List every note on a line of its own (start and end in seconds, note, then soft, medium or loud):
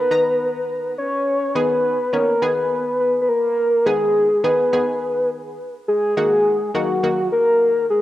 0.00 0.65 B4 medium
0.11 0.96 D#3 medium
0.11 0.96 B3 medium
0.11 0.96 A#5 medium
0.98 1.57 C#5 loud
1.55 1.98 D#3 medium
1.55 1.98 B3 medium
1.55 1.98 G#4 medium
1.55 2.15 B4 loud
2.13 2.34 D#3 medium
2.13 2.34 B3 medium
2.13 2.34 C#4 medium
2.13 2.43 A#4 medium
2.42 3.27 D#3 medium
2.42 3.27 B3 medium
2.42 3.27 G#4 medium
2.42 2.99 B4 loud
3.00 3.20 B4 medium
3.22 3.30 B4 medium
3.29 3.88 A#4 loud
3.86 4.29 D#3 medium
3.86 4.29 B3 medium
3.86 4.45 G#4 medium
3.86 4.29 G#4 medium
4.44 4.65 D#3 medium
4.44 4.65 B3 medium
4.44 4.65 G#4 medium
4.44 5.30 B4 medium
4.73 5.58 D#3 medium
4.73 5.58 B3 medium
4.73 5.58 G#4 medium
5.88 6.15 G#4 medium
6.17 6.59 D#3 medium
6.17 6.60 A#3 medium
6.17 6.60 F#4 medium
6.17 6.71 G#4 loud
6.74 6.96 D#3 medium
6.74 6.96 A#3 medium
6.74 7.28 F#4 medium
6.74 6.96 F#4 medium
7.03 7.88 D#3 medium
7.03 7.89 A#3 medium
7.03 7.89 F#4 medium
7.32 7.86 A#4 loud
7.90 8.02 G#4 loud